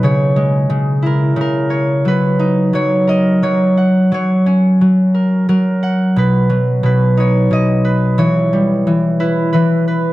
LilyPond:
<<
  \new Staff \with { instrumentName = "Harp" } { \time 3/4 \key b \major \tempo 4 = 89 cis''4 r8 ais'8 ais'4 | b'4 cis''8 dis''8 cis''8. r16 | cis''4. r8 ais'4 | b'4 b'8 cis''8 dis''8. r16 |
cis''4. b'8 b'4 | }
  \new Staff \with { instrumentName = "Harp" } { \clef bass \time 3/4 \key b \major cis8 gis8 cis8 e'8 cis8 cis''8 | fis8 dis'8 fis8 ais'8 fis8 fis''8 | fis8 cis'8 fis8 ais'8 fis8 fis''8 | b,8 fis8 b,8 dis'8 b,8 b'8 |
e8 g8 e8 e'8 e8 b'8 | }
>>